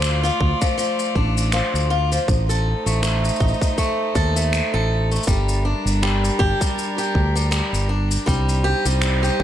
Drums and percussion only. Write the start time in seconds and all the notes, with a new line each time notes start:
0.02 finger snap, shaker
0.25 shaker
0.41 kick
0.62 kick, shaker
0.79 shaker
0.99 shaker
1.15 kick
1.38 shaker
1.52 finger snap, shaker
1.75 shaker
2.12 shaker
2.28 kick, shaker
2.50 shaker
2.87 shaker
3.03 finger snap, shaker
3.25 shaker
3.29 shaker
3.36 shaker
3.40 kick
3.48 shaker
3.54 shaker
3.61 kick, shaker
3.78 kick, shaker
4.15 kick, shaker
4.37 shaker
4.53 finger snap, shaker
5.12 shaker
5.16 shaker
5.23 shaker
5.27 kick, shaker
5.49 shaker
5.87 shaker
6.03 finger snap
6.25 shaker
6.40 kick
6.61 kick, shaker
6.79 shaker
6.98 shaker
7.15 kick
7.37 shaker
7.52 finger snap, shaker
7.74 shaker
8.11 shaker
8.27 kick, shaker
8.49 shaker
8.86 shaker
9.02 finger snap, shaker
9.24 shaker
9.40 kick